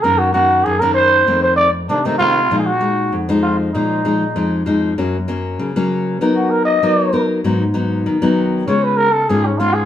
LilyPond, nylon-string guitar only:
\new Staff \with { instrumentName = "Nylon-string guitar" } { \time 4/4 \key bes \phrygian \tempo 4 = 97 << { <ees bes des'>8 <ees bes des'>8. <ees bes des'>8. <ees a c'>8. r16 <ees a c'>16 <ees a c'>16 <ees a c'>16 r16 | <f aes ees'>16 r16 <aes ees'>8. <f aes ees'>8. <f aes ees'>8 <f aes ees'>16 r16 <f aes ees'>8 <f aes ees'>8 | \key fis \major <fis ais cis'>16 r16 <fis ais cis'>8. <fis ais cis'>8. <b dis' ais'>4 <b dis' ais'>8 <b dis' ais'>8 | <fis b dis'>16 r16 <fis b dis'>8. <fis b dis'>8. <gis cis' eis'>8. r16 <gis cis' eis'>16 r16 <gis cis' eis'>8 | } \\ { ges,4 ges,4 f,4 c4 | bes,4 f,4 bes,4 f,4 | fis,4 cis4 fis4 fis4 | gis,4 dis4 cis4 gis,4 | } >> }